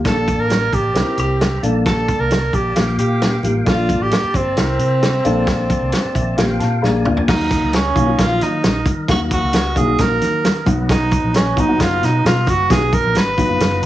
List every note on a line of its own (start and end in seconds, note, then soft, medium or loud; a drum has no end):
0.04 0.35 A#1 medium
0.04 0.63 A#3 medium
0.04 0.94 A#3 medium
0.04 0.63 D4 medium
0.04 0.11 G#4 medium
0.04 0.41 A4 loud
0.04 0.94 D5 medium
0.04 0.94 A5 medium
0.04 kick loud
0.04 snare loud
0.04 closed hi-hat medium
0.04 muted conga soft
0.11 0.66 A4 medium
0.28 kick medium
0.28 closed hi-hat medium
0.28 muted conga soft
0.38 0.68 A1 medium
0.38 0.75 A#4 loud
0.50 snare loud
0.50 closed hi-hat medium
0.50 high conga medium
0.72 0.92 A1 medium
0.72 1.18 G4 medium
0.72 kick medium
0.72 closed hi-hat medium
0.94 1.04 C2 loud
0.94 1.38 C4 medium
0.94 1.01 D#4 medium
0.94 1.39 A#4 medium
0.94 1.62 C5 medium
0.94 1.62 E5 medium
0.94 1.62 A#5 medium
0.94 snare loud
0.94 closed hi-hat medium
0.94 muted conga soft
0.94 low conga medium
1.00 1.41 E4 medium
1.17 1.57 C2 medium
1.17 1.61 G4 medium
1.17 closed hi-hat medium
1.41 snare loud
1.41 closed hi-hat medium
1.41 high conga medium
1.62 2.13 A#1 medium
1.62 2.35 A#3 medium
1.62 4.54 A#3 medium
1.62 2.35 D4 medium
1.62 2.36 A4 medium
1.62 2.75 D5 medium
1.62 2.75 A5 medium
1.62 closed hi-hat medium
1.62 high conga medium
1.86 2.21 A4 loud
1.86 kick loud
1.86 snare loud
1.86 closed hi-hat medium
1.86 muted conga soft
2.08 kick medium
2.08 closed hi-hat medium
2.08 muted conga soft
2.19 2.49 C2 medium
2.19 2.56 A#4 loud
2.31 snare loud
2.31 closed hi-hat medium
2.31 high conga medium
2.53 2.73 A#1 medium
2.53 2.98 G4 loud
2.53 kick medium
2.53 closed hi-hat medium
2.75 2.96 A#1 loud
2.75 3.19 A#3 medium
2.75 3.20 F4 medium
2.75 3.20 G4 medium
2.75 3.65 F5 medium
2.75 3.66 G5 medium
2.75 snare loud
2.75 closed hi-hat medium
2.75 muted conga soft
2.75 low conga medium
2.98 3.38 A#2 medium
2.98 3.41 G4 medium
2.98 closed hi-hat medium
3.22 snare loud
3.22 closed hi-hat medium
3.22 high conga medium
3.43 3.63 A1 medium
3.43 3.58 A#3 medium
3.43 3.58 F4 medium
3.43 3.59 G4 medium
3.43 closed hi-hat medium
3.43 high conga medium
3.65 3.96 A#1 loud
3.65 4.24 A#3 medium
3.65 4.24 D4 medium
3.65 4.04 F4 loud
3.65 4.24 A4 medium
3.65 4.56 D5 medium
3.65 4.56 A5 medium
3.65 kick loud
3.65 snare loud
3.65 closed hi-hat medium
3.65 muted conga soft
3.89 kick medium
3.89 closed hi-hat medium
3.89 muted conga soft
4.00 4.10 A1 medium
4.00 4.37 G4 loud
4.11 snare loud
4.11 closed hi-hat medium
4.11 high conga medium
4.23 muted fingered electric bass stroke soft
4.34 4.54 G1 medium
4.34 6.84 C4 medium
4.34 kick medium
4.34 closed hi-hat medium
4.56 4.77 C2 loud
4.56 5.00 C4 medium
4.56 5.00 E4 medium
4.56 5.01 A#4 medium
4.56 5.24 C5 medium
4.56 5.24 E5 medium
4.56 5.24 A#5 medium
4.56 snare loud
4.56 closed hi-hat medium
4.56 muted conga soft
4.56 low conga medium
4.79 5.19 C3 medium
4.79 closed hi-hat medium
4.79 muted conga soft
5.03 snare loud
5.03 closed hi-hat medium
5.03 high conga medium
5.24 5.75 A#1 medium
5.24 5.97 A#3 loud
5.24 7.26 A#3 medium
5.24 5.97 D4 medium
5.24 5.97 A4 loud
5.24 6.37 D5 medium
5.24 6.37 A5 medium
5.24 closed hi-hat medium
5.24 high conga medium
5.47 kick loud
5.47 snare loud
5.47 closed hi-hat medium
5.47 muted conga soft
5.70 kick medium
5.70 closed hi-hat medium
5.70 muted conga soft
5.81 5.91 C2 medium
5.92 snare loud
5.92 closed hi-hat medium
5.92 high conga medium
6.04 muted fingered electric bass stroke soft
6.15 6.35 A#1 medium
6.15 6.36 E5 medium
6.15 kick medium
6.15 closed hi-hat medium
6.37 6.58 A#1 loud
6.37 6.80 A#3 medium
6.37 6.81 F4 medium
6.37 6.81 G4 loud
6.37 6.59 F5 medium
6.37 6.83 F5 medium
6.37 6.83 G5 medium
6.37 snare loud
6.37 closed hi-hat medium
6.37 muted conga soft
6.37 low conga medium
6.59 6.80 A#2 medium
6.59 6.81 A5 medium
6.59 snare soft
6.59 closed hi-hat medium
6.59 muted conga soft
6.82 7.03 A#1 medium
6.82 7.00 A#3 loud
6.82 7.01 D4 medium
6.82 7.01 G#4 loud
6.82 7.28 D5 medium
6.82 7.28 G#5 medium
6.82 7.24 A#5 medium
6.82 snare medium
6.82 high conga medium
7.04 7.25 D2 loud
7.04 7.19 A#3 medium
7.04 7.20 D4 medium
7.04 7.20 F4 medium
7.04 mid tom medium
7.04 high conga medium
7.17 floor tom medium
7.27 7.58 D#2 loud
7.27 7.71 F#3 medium
7.27 7.71 A#3 medium
7.27 7.71 D#4 medium
7.27 7.76 D#4 medium
7.27 7.72 F#4 medium
7.27 10.64 A#4 medium
7.27 13.86 D#5 medium
7.27 kick loud
7.27 snare loud
7.27 crash loud
7.27 muted conga soft
7.51 kick loud
7.51 closed hi-hat medium
7.51 muted conga medium
7.62 7.92 C#2 medium
7.73 8.21 C#4 medium
7.73 snare loud
7.73 closed hi-hat medium
7.73 high conga medium
7.95 8.15 B1 medium
7.95 8.03 F#3 medium
7.95 8.03 A#3 medium
7.95 8.03 D#4 medium
7.95 8.03 F#4 medium
7.95 kick medium
7.95 closed hi-hat medium
8.06 8.64 F#3 medium
8.06 8.65 A#3 medium
8.06 8.65 D#4 medium
8.06 8.65 F4 medium
8.18 8.38 A#1 loud
8.18 8.44 F4 loud
8.18 kick medium
8.18 snare loud
8.18 closed hi-hat loud
8.18 muted conga soft
8.41 8.61 D#3 medium
8.41 8.87 D#4 medium
8.41 snare soft
8.41 closed hi-hat medium
8.64 8.83 A#1 medium
8.64 snare loud
8.64 closed hi-hat medium
8.64 high conga medium
8.86 9.06 D#3 loud
8.86 kick loud
8.86 closed hi-hat medium
8.86 high conga medium
9.08 9.38 D#2 loud
9.08 9.52 F#3 medium
9.08 9.52 A#3 medium
9.08 9.52 D#4 medium
9.08 9.52 F#4 medium
9.08 9.20 F#4 medium
9.08 kick loud
9.08 snare loud
9.08 closed hi-hat medium
9.08 muted conga soft
9.31 9.79 F#4 loud
9.31 kick loud
9.31 closed hi-hat medium
9.31 muted conga medium
9.43 9.72 C#2 medium
9.53 snare loud
9.53 closed hi-hat medium
9.53 high conga medium
9.75 9.96 B1 medium
9.75 9.83 F#3 medium
9.75 9.83 A#3 medium
9.75 9.84 D#4 medium
9.75 9.84 F#4 medium
9.75 10.02 G#4 loud
9.75 kick medium
9.75 closed hi-hat medium
9.86 10.45 F#3 medium
9.86 10.45 A#3 medium
9.86 10.45 D#4 medium
9.86 10.45 F#4 medium
9.98 10.19 A#1 loud
9.98 10.67 A#4 loud
9.98 kick loud
9.98 snare loud
9.98 closed hi-hat medium
9.98 muted conga soft
9.98 low conga medium
10.21 10.61 D#3 medium
10.21 snare soft
10.21 closed hi-hat medium
10.21 muted conga soft
10.21 low conga medium
10.45 snare loud
10.45 closed hi-hat loud
10.45 high conga medium
10.66 11.16 B1 loud
10.66 11.38 F#3 loud
10.66 11.39 B3 medium
10.66 11.39 D#4 loud
10.66 11.39 F#4 loud
10.66 13.86 B4 medium
10.66 kick loud
10.66 closed hi-hat medium
10.66 high conga medium
10.89 11.32 D#4 medium
10.89 kick loud
10.89 snare loud
10.89 closed hi-hat medium
10.89 muted conga soft
11.11 kick loud
11.11 closed hi-hat medium
11.11 muted conga medium
11.23 11.53 A#1 medium
11.34 11.61 C#4 medium
11.34 snare loud
11.34 closed hi-hat loud
11.34 high conga medium
11.56 11.77 G#1 medium
11.56 11.64 F#3 medium
11.56 11.64 B3 medium
11.56 11.64 D#4 medium
11.56 11.83 D#4 medium
11.56 11.64 F#4 medium
11.56 kick loud
11.56 closed hi-hat medium
11.68 12.26 F#3 medium
11.68 12.26 B3 medium
11.68 12.26 D#4 medium
11.68 12.26 F#4 medium
11.80 12.00 F#1 loud
11.80 12.06 F4 loud
11.80 kick medium
11.80 snare loud
11.80 closed hi-hat medium
11.80 muted conga soft
12.03 12.22 B2 medium
12.03 12.26 D#4 medium
12.03 snare soft
12.03 closed hi-hat medium
12.25 12.45 B2 medium
12.25 12.51 F4 loud
12.25 snare loud
12.25 closed hi-hat loud
12.25 high conga medium
12.46 12.67 F#1 medium
12.46 12.73 F#4 loud
12.46 kick loud
12.46 closed hi-hat medium
12.46 high conga medium
12.69 13.00 B1 loud
12.69 13.13 F#3 medium
12.69 13.13 B3 medium
12.69 13.13 D#4 medium
12.69 13.14 F#4 medium
12.69 12.95 G#4 loud
12.69 kick loud
12.69 snare loud
12.69 closed hi-hat medium
12.69 muted conga soft
12.93 13.19 A#4 loud
12.93 kick loud
12.93 closed hi-hat medium
12.93 muted conga medium
13.03 13.13 A#1 loud
13.15 13.45 G#1 loud
13.15 13.86 B4 loud
13.15 snare loud
13.15 closed hi-hat medium
13.15 high conga medium
13.37 13.44 F#3 medium
13.37 13.45 B3 medium
13.37 13.45 D#4 medium
13.37 13.45 F#4 medium
13.37 kick medium
13.37 closed hi-hat medium
13.48 13.58 F#1 medium
13.48 13.86 F#3 medium
13.48 13.86 B3 medium
13.48 13.86 D#4 medium
13.48 13.86 F4 medium
13.60 13.80 F#1 medium
13.60 snare loud
13.60 closed hi-hat loud
13.60 muted conga soft
13.60 low conga medium
13.82 13.86 B2 medium
13.82 13.86 A#5 medium
13.82 closed hi-hat medium